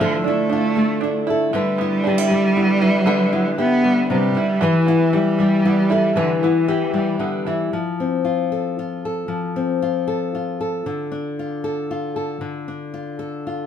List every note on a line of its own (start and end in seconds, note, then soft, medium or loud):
0.00 1.53 D3 medium
0.00 0.22 F3 loud
0.00 1.53 F3 medium
0.00 0.74 A3 medium
0.00 0.24 D4 medium
0.00 0.49 E4 medium
0.00 1.29 A4 medium
0.24 1.24 A3 medium
0.24 0.49 D4 medium
0.24 1.03 E4 medium
0.49 0.62 D4 medium
0.49 1.51 F4 medium
0.75 1.58 A3 medium
0.75 1.51 A3 medium
1.01 2.04 D4 medium
1.01 1.57 E4 medium
1.27 2.03 E4 medium
1.27 1.55 A4 medium
1.52 3.05 D3 medium
1.52 3.55 G3 loud
1.52 2.82 B4 medium
1.78 2.30 B3 medium
1.78 2.56 E4 medium
2.04 2.18 D4 medium
2.04 3.58 G4 medium
2.18 2.80 E4 medium
2.30 3.83 G3 medium
2.30 3.84 G3 medium
2.56 3.32 B3 medium
2.56 3.10 E4 medium
2.81 3.58 E4 medium
2.81 3.07 B4 medium
3.06 4.60 D3 medium
3.06 4.33 D3 medium
3.06 4.62 B4 medium
3.33 4.11 B3 medium
3.33 4.88 E4 medium
3.58 4.07 B3 loud
3.58 4.36 E4 medium
3.58 5.13 G4 medium
3.84 5.39 G3 medium
3.84 5.24 G3 medium
4.10 4.36 C3 medium
4.10 4.64 G3 medium
4.10 4.86 B3 medium
4.35 4.61 D3 medium
4.35 5.13 E4 medium
4.61 6.16 E3 medium
4.61 6.14 E3 medium
4.61 5.15 E3 loud
4.61 5.91 B4 medium
4.87 5.64 B3 medium
4.87 5.64 E4 medium
5.13 6.19 G3 loud
5.13 5.89 E4 medium
5.13 6.14 G4 medium
5.39 6.93 G3 medium
5.39 6.92 G3 medium
5.65 6.42 B3 medium
5.65 6.14 E4 medium
5.90 6.67 E4 medium
5.90 6.16 A4 medium
6.16 6.42 D3 medium
6.16 7.19 E3 medium
6.16 7.72 E3 medium
6.16 7.69 B4 medium
6.41 7.45 E3 medium
6.41 7.19 B3 medium
6.41 7.70 E4 medium
6.68 7.45 E4 medium
6.68 7.69 G4 medium
6.94 7.72 G3 medium
6.94 7.77 G3 medium
7.19 7.46 D3 medium
7.19 7.77 B3 medium
7.46 7.73 E3 medium
7.46 7.78 E4 medium
7.73 9.28 F3 medium
8.00 9.55 C4 soft
8.25 8.78 F4 soft
8.52 9.05 A4 soft
8.79 9.82 F4 medium
9.05 10.07 A4 soft
9.28 10.86 F3 medium
9.56 10.85 C4 medium
9.82 10.34 F4 medium
10.08 10.60 A4 soft
10.35 11.39 F4 medium
10.61 11.64 A4 soft
10.86 12.40 D3 medium
11.12 12.38 D4 medium
11.39 11.90 F4 medium
11.64 12.16 A4 medium
11.91 12.93 F4 medium
12.16 13.18 A4 soft
12.41 13.66 D3 medium
12.68 13.66 D4 soft
12.94 13.45 F4 soft
13.19 13.66 A4 soft
13.47 13.66 F4 soft